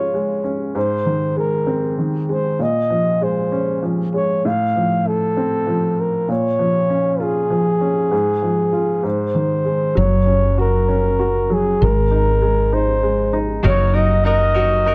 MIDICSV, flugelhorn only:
0, 0, Header, 1, 2, 480
1, 0, Start_track
1, 0, Tempo, 612870
1, 594, Time_signature, 6, 3, 24, 8
1, 11707, End_track
2, 0, Start_track
2, 0, Title_t, "Flugelhorn"
2, 0, Program_c, 0, 56
2, 0, Note_on_c, 0, 73, 71
2, 358, Note_off_c, 0, 73, 0
2, 606, Note_on_c, 0, 72, 81
2, 1048, Note_off_c, 0, 72, 0
2, 1086, Note_on_c, 0, 70, 63
2, 1530, Note_off_c, 0, 70, 0
2, 1817, Note_on_c, 0, 72, 73
2, 2055, Note_on_c, 0, 75, 89
2, 2067, Note_off_c, 0, 72, 0
2, 2535, Note_on_c, 0, 72, 67
2, 2547, Note_off_c, 0, 75, 0
2, 3011, Note_off_c, 0, 72, 0
2, 3254, Note_on_c, 0, 73, 72
2, 3499, Note_on_c, 0, 77, 80
2, 3510, Note_off_c, 0, 73, 0
2, 3976, Note_on_c, 0, 69, 75
2, 3987, Note_off_c, 0, 77, 0
2, 4702, Note_on_c, 0, 70, 64
2, 4714, Note_off_c, 0, 69, 0
2, 4934, Note_off_c, 0, 70, 0
2, 4938, Note_on_c, 0, 73, 77
2, 5657, Note_on_c, 0, 68, 66
2, 5669, Note_off_c, 0, 73, 0
2, 7085, Note_off_c, 0, 68, 0
2, 7090, Note_on_c, 0, 72, 68
2, 7820, Note_on_c, 0, 73, 82
2, 7832, Note_off_c, 0, 72, 0
2, 8298, Note_off_c, 0, 73, 0
2, 8307, Note_on_c, 0, 70, 68
2, 9031, Note_on_c, 0, 68, 69
2, 9043, Note_off_c, 0, 70, 0
2, 9266, Note_on_c, 0, 70, 83
2, 9278, Note_off_c, 0, 68, 0
2, 9978, Note_on_c, 0, 72, 78
2, 9990, Note_off_c, 0, 70, 0
2, 10480, Note_off_c, 0, 72, 0
2, 10694, Note_on_c, 0, 73, 93
2, 10927, Note_on_c, 0, 75, 93
2, 10939, Note_off_c, 0, 73, 0
2, 11163, Note_off_c, 0, 75, 0
2, 11167, Note_on_c, 0, 75, 96
2, 11707, Note_off_c, 0, 75, 0
2, 11707, End_track
0, 0, End_of_file